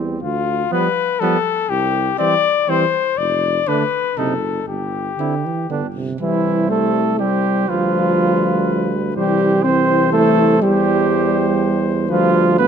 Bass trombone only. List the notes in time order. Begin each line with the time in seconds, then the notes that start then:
Already playing: E2
0.23 D2
1.70 C2
3.19 F1
4.18 F#1
4.68 G1
5.69 G1
6.20 C2
7.69 D2
9.17 C2
10.63 E2
12.10 D2